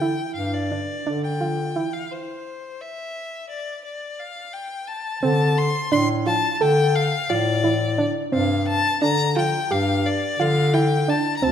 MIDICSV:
0, 0, Header, 1, 4, 480
1, 0, Start_track
1, 0, Tempo, 696056
1, 1456, Time_signature, 9, 3, 24, 8
1, 3613, Tempo, 687285
1, 7998, End_track
2, 0, Start_track
2, 0, Title_t, "Violin"
2, 0, Program_c, 0, 40
2, 0, Note_on_c, 0, 79, 80
2, 237, Note_off_c, 0, 79, 0
2, 241, Note_on_c, 0, 77, 72
2, 368, Note_on_c, 0, 74, 76
2, 378, Note_off_c, 0, 77, 0
2, 849, Note_off_c, 0, 74, 0
2, 854, Note_on_c, 0, 79, 76
2, 1331, Note_on_c, 0, 77, 67
2, 1342, Note_off_c, 0, 79, 0
2, 1454, Note_on_c, 0, 72, 65
2, 1465, Note_off_c, 0, 77, 0
2, 1939, Note_on_c, 0, 76, 77
2, 1949, Note_off_c, 0, 72, 0
2, 2407, Note_off_c, 0, 76, 0
2, 2412, Note_on_c, 0, 74, 69
2, 2637, Note_off_c, 0, 74, 0
2, 2652, Note_on_c, 0, 74, 68
2, 2891, Note_on_c, 0, 77, 76
2, 2901, Note_off_c, 0, 74, 0
2, 3125, Note_on_c, 0, 79, 75
2, 3135, Note_off_c, 0, 77, 0
2, 3357, Note_on_c, 0, 81, 71
2, 3367, Note_off_c, 0, 79, 0
2, 3595, Note_off_c, 0, 81, 0
2, 3600, Note_on_c, 0, 81, 91
2, 3850, Note_on_c, 0, 84, 100
2, 3860, Note_off_c, 0, 81, 0
2, 4084, Note_off_c, 0, 84, 0
2, 4088, Note_on_c, 0, 84, 104
2, 4198, Note_off_c, 0, 84, 0
2, 4326, Note_on_c, 0, 81, 102
2, 4524, Note_off_c, 0, 81, 0
2, 4524, Note_on_c, 0, 81, 72
2, 4574, Note_on_c, 0, 79, 106
2, 4584, Note_off_c, 0, 81, 0
2, 4810, Note_on_c, 0, 77, 105
2, 4820, Note_off_c, 0, 79, 0
2, 5051, Note_on_c, 0, 74, 106
2, 5061, Note_off_c, 0, 77, 0
2, 5594, Note_off_c, 0, 74, 0
2, 5777, Note_on_c, 0, 77, 84
2, 6000, Note_off_c, 0, 77, 0
2, 6015, Note_on_c, 0, 81, 108
2, 6239, Note_off_c, 0, 81, 0
2, 6259, Note_on_c, 0, 82, 111
2, 6481, Note_off_c, 0, 82, 0
2, 6500, Note_on_c, 0, 79, 105
2, 6734, Note_on_c, 0, 77, 104
2, 6745, Note_off_c, 0, 79, 0
2, 6980, Note_on_c, 0, 74, 93
2, 6990, Note_off_c, 0, 77, 0
2, 7225, Note_on_c, 0, 77, 107
2, 7236, Note_off_c, 0, 74, 0
2, 7455, Note_on_c, 0, 79, 94
2, 7465, Note_off_c, 0, 77, 0
2, 7701, Note_on_c, 0, 81, 92
2, 7711, Note_off_c, 0, 79, 0
2, 7886, Note_off_c, 0, 81, 0
2, 7890, Note_on_c, 0, 82, 82
2, 7938, Note_on_c, 0, 81, 93
2, 7948, Note_off_c, 0, 82, 0
2, 7998, Note_off_c, 0, 81, 0
2, 7998, End_track
3, 0, Start_track
3, 0, Title_t, "Synth pluck"
3, 0, Program_c, 1, 84
3, 10, Note_on_c, 1, 64, 76
3, 418, Note_off_c, 1, 64, 0
3, 493, Note_on_c, 1, 62, 67
3, 697, Note_off_c, 1, 62, 0
3, 734, Note_on_c, 1, 62, 78
3, 938, Note_off_c, 1, 62, 0
3, 970, Note_on_c, 1, 65, 68
3, 1175, Note_off_c, 1, 65, 0
3, 1213, Note_on_c, 1, 64, 72
3, 1417, Note_off_c, 1, 64, 0
3, 3604, Note_on_c, 1, 60, 94
3, 4015, Note_off_c, 1, 60, 0
3, 4087, Note_on_c, 1, 62, 90
3, 4293, Note_off_c, 1, 62, 0
3, 4329, Note_on_c, 1, 65, 85
3, 4535, Note_off_c, 1, 65, 0
3, 4568, Note_on_c, 1, 69, 91
3, 4977, Note_off_c, 1, 69, 0
3, 5051, Note_on_c, 1, 65, 91
3, 5256, Note_off_c, 1, 65, 0
3, 5288, Note_on_c, 1, 64, 81
3, 5495, Note_off_c, 1, 64, 0
3, 5528, Note_on_c, 1, 62, 78
3, 5735, Note_off_c, 1, 62, 0
3, 5766, Note_on_c, 1, 60, 85
3, 6175, Note_off_c, 1, 60, 0
3, 6251, Note_on_c, 1, 62, 89
3, 6456, Note_off_c, 1, 62, 0
3, 6494, Note_on_c, 1, 65, 78
3, 6697, Note_off_c, 1, 65, 0
3, 6733, Note_on_c, 1, 67, 93
3, 7138, Note_off_c, 1, 67, 0
3, 7214, Note_on_c, 1, 65, 93
3, 7417, Note_off_c, 1, 65, 0
3, 7454, Note_on_c, 1, 64, 79
3, 7656, Note_off_c, 1, 64, 0
3, 7693, Note_on_c, 1, 62, 79
3, 7896, Note_off_c, 1, 62, 0
3, 7932, Note_on_c, 1, 60, 87
3, 7998, Note_off_c, 1, 60, 0
3, 7998, End_track
4, 0, Start_track
4, 0, Title_t, "Bass clarinet"
4, 0, Program_c, 2, 71
4, 0, Note_on_c, 2, 50, 74
4, 134, Note_off_c, 2, 50, 0
4, 251, Note_on_c, 2, 43, 88
4, 616, Note_off_c, 2, 43, 0
4, 733, Note_on_c, 2, 50, 80
4, 1278, Note_off_c, 2, 50, 0
4, 3608, Note_on_c, 2, 50, 101
4, 3974, Note_off_c, 2, 50, 0
4, 4092, Note_on_c, 2, 45, 81
4, 4457, Note_off_c, 2, 45, 0
4, 4575, Note_on_c, 2, 50, 100
4, 4938, Note_off_c, 2, 50, 0
4, 5057, Note_on_c, 2, 45, 91
4, 5601, Note_off_c, 2, 45, 0
4, 5779, Note_on_c, 2, 43, 96
4, 6140, Note_off_c, 2, 43, 0
4, 6261, Note_on_c, 2, 50, 83
4, 6621, Note_off_c, 2, 50, 0
4, 6737, Note_on_c, 2, 43, 94
4, 7098, Note_off_c, 2, 43, 0
4, 7211, Note_on_c, 2, 50, 102
4, 7755, Note_off_c, 2, 50, 0
4, 7930, Note_on_c, 2, 38, 96
4, 7998, Note_off_c, 2, 38, 0
4, 7998, End_track
0, 0, End_of_file